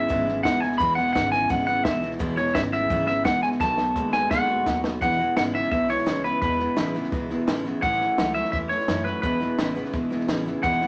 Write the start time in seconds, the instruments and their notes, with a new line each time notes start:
Already playing: clean electric guitar E5
0.08 upright bass G#1, steel-string acoustic guitar E2 B2 E3 G#3 B3 E4, clean electric guitar E2 C#3, kick, snare
0.27 clean electric guitar E2 C#3, steel-string acoustic guitar E3 G#3 B3 E4, snare
0.43 upright bass C#2, clean electric guitar E2 B2 F#5, steel-string acoustic guitar E3 G#3 B3 E4, kick, snare, hi-hat pedal
0.60 clean electric guitar E2 B2 G#5, steel-string acoustic guitar G#3 B3 E4, snare
0.65 steel-string acoustic guitar E3
0.72 snare
0.78 upright bass E1, steel-string acoustic guitar E2 B2 E3 G#3 B3 E4, clean electric guitar E2 B2 B5, kick, snare
0.95 clean electric guitar E2 B2 F#5, steel-string acoustic guitar G#3 B3 E4, snare
1.00 steel-string acoustic guitar E3
1.07 snare
1.13 upright bass G#1, clean electric guitar E2 C#3 F#5, steel-string acoustic guitar E3 G#3 B3, kick, snare, hi-hat pedal
1.18 steel-string acoustic guitar E4
1.32 clean electric guitar E2 C#3 G#5, steel-string acoustic guitar E3 G#3 B3 E4, snare
1.49 upright bass G#1, steel-string acoustic guitar E2 B2 E3 G#3 B3 E4, clean electric guitar E2 C#3 F#5, kick, snare
1.66 clean electric guitar E2 C#3 F#5, steel-string acoustic guitar E3 G#3 B3 E4, snare
1.84 upright bass C#2, clean electric guitar E2 B2 E5, steel-string acoustic guitar E3 G#3 B3, kick, snare, hi-hat pedal
1.88 steel-string acoustic guitar E4
2.02 clean electric guitar E2 B2, steel-string acoustic guitar E3 G#3 B3 E4, snare
2.11 snare
2.19 upright bass E1, steel-string acoustic guitar E2 B2 E3 G#3 B3 E4, clean electric guitar E2 B2, kick, snare
2.37 clean electric guitar E2 B2 C#5, steel-string acoustic guitar E3 G#3 B3 E4, snare
2.46 snare
2.54 upright bass G#1, clean electric guitar E2 C#3 E5, steel-string acoustic guitar E3 G#3 B3 E4, kick, snare, hi-hat pedal
2.72 clean electric guitar E2 C#3 E5, steel-string acoustic guitar E3 G#3 B3 E4, snare
2.89 upright bass G#1, steel-string acoustic guitar E2 B2 E3 G#3 B3 E4, clean electric guitar E2 C#3, kick, snare
3.07 clean electric guitar E2 C#3 E5, steel-string acoustic guitar E3 G#3 B3 E4, snare
3.24 upright bass C#2, clean electric guitar E2 B2 F#5, steel-string acoustic guitar E3 G#3 B3 E4, kick, snare, hi-hat pedal
3.43 clean electric guitar E2 B2 G#5, steel-string acoustic guitar E3 G#3 B3 E4, snare
3.52 snare
3.60 upright bass B1, clean electric guitar B2 F#3 A5, steel-string acoustic guitar B2 D#3 A3 B3 F#4, kick, snare
3.78 clean electric guitar B2 F#3, steel-string acoustic guitar B3 F#4, snare
3.82 steel-string acoustic guitar A3
3.96 upright bass D#2, clean electric guitar B2 G#3, steel-string acoustic guitar D#3 A3 B3 F#4, kick, hi-hat pedal
4.12 clean electric guitar B2 G#3 G#5, steel-string acoustic guitar A3 B3 F#4, snare
4.31 upright bass D#2, clean electric guitar B2 G#3 F#5, steel-string acoustic guitar B2 D#3 A3 B3 F#4, kick, snare
4.48 clean electric guitar B2 G#3, steel-string acoustic guitar A3 B3 F#4
4.66 upright bass D#2, clean electric guitar B2 F#3, steel-string acoustic guitar D#3 A3 B3 F#4, kick, snare, hi-hat pedal
4.83 clean electric guitar B2 F#3, steel-string acoustic guitar A3 B3 F#4, snare
5.01 upright bass E1, clean electric guitar E2 B2 F#5, steel-string acoustic guitar E2 B2 E3 G#3 B3 E4, kick, snare
5.11 snare
5.19 clean electric guitar E2 B2, steel-string acoustic guitar E3 G#3 B3 E4, snare
5.36 upright bass G#1, clean electric guitar E2 C#3 F#5, steel-string acoustic guitar E2 B2 E3 G#3 B3 E4, snare, hi-hat pedal
5.53 clean electric guitar E2 C#3 E5, steel-string acoustic guitar E3 G#3 B3 E4, snare
5.63 snare
5.71 upright bass B1, clean electric guitar E2 B2 E5, steel-string acoustic guitar E3 G#3 B3 E4, kick, snare
5.88 clean electric guitar E2 B2 C#5, steel-string acoustic guitar E3 G#3 B3 E4, snare
5.98 snare
6.06 upright bass C#2, clean electric guitar E2 C#3, steel-string acoustic guitar E2 B2 E3 G#3 B3 E4, snare, hi-hat pedal
6.24 clean electric guitar E2 C#3 B4, steel-string acoustic guitar E3 G#3 B3 E4, snare
6.41 upright bass E1, clean electric guitar E2 B2 B4, steel-string acoustic guitar E2 B2 E3 G#3 B3 E4, kick, snare
6.58 clean electric guitar E2 B2, steel-string acoustic guitar E3 G#3 B3 E4, snare
6.76 upright bass A1, steel-string acoustic guitar E2 B2 E3 G#3 B3 E4, clean electric guitar E2 C#3, snare, hi-hat pedal
6.94 clean electric guitar E2 C#3, steel-string acoustic guitar E3 G#3 B3 E4, snare
7.04 snare
7.12 upright bass C#2, clean electric guitar E2 B2, steel-string acoustic guitar E3 G#3 B3 E4, kick, snare
7.30 clean electric guitar E2 B2, steel-string acoustic guitar E3 G#3 B3 E4, snare
7.47 upright bass A1, clean electric guitar E2 C#3, steel-string acoustic guitar E2 B2 E3 G#3 B3 E4, snare, hi-hat pedal
7.65 clean electric guitar E2 C#3, steel-string acoustic guitar E3 G#3 B3 E4, snare
7.82 upright bass A1, clean electric guitar A2 E3 F#5, steel-string acoustic guitar A2 E3 A3 C#4 E4, kick, snare
7.92 snare
8.01 clean electric guitar A2 E3, steel-string acoustic guitar A3 C#4 E4, snare
8.18 upright bass C#2, clean electric guitar A2 F#3, steel-string acoustic guitar A2 E3 A3 C#4 E4, snare, hi-hat pedal
8.34 clean electric guitar A2 F#3 E5, steel-string acoustic guitar C#4 E4, snare
8.39 steel-string acoustic guitar A3
8.45 snare
8.52 upright bass E2, clean electric guitar A2 E3 E5, steel-string acoustic guitar E3 A3 C#4, kick, snare
8.56 steel-string acoustic guitar E4
8.69 clean electric guitar A2 E3 C#5, steel-string acoustic guitar A3 C#4 E4, snare
8.80 snare
8.88 upright bass F#2, steel-string acoustic guitar A2 E3 A3 C#4 E4, clean electric guitar A2 F#3, snare, hi-hat pedal
9.05 clean electric guitar A2 F#3 B4, steel-string acoustic guitar A3 C#4 E4, snare
9.22 upright bass E1, steel-string acoustic guitar E2 B2 E3 G#3 B3 E4, clean electric guitar E2 B2 B4, kick, snare
9.40 clean electric guitar E2 B2, steel-string acoustic guitar E3 G#3 B3 E4, snare
9.58 upright bass A1, steel-string acoustic guitar E2 B2 E3 G#3 B3 E4, clean electric guitar E2 C#3, snare, hi-hat pedal
9.75 clean electric guitar E2 C#3, steel-string acoustic guitar E3 G#3 B3 E4, snare
9.85 snare
9.93 upright bass C#2, clean electric guitar E2 B2, steel-string acoustic guitar E3 G#3 B3 E4, kick, snare
10.10 clean electric guitar E2 B2, steel-string acoustic guitar E3 G#3 B3 E4, snare
10.20 snare
10.28 upright bass A1, steel-string acoustic guitar E2 B2 E3 G#3 B3 E4, clean electric guitar E2 C#3, snare, hi-hat pedal
10.46 clean electric guitar E2 C#3, steel-string acoustic guitar E3 G#3 B3 E4, snare
10.63 upright bass E1, steel-string acoustic guitar E2 B2 E3 G#3 B3 E4, clean electric guitar E2 B2 F#5, kick, snare
10.72 snare
10.81 clean electric guitar E2 B2, steel-string acoustic guitar G#3 B3 E4, snare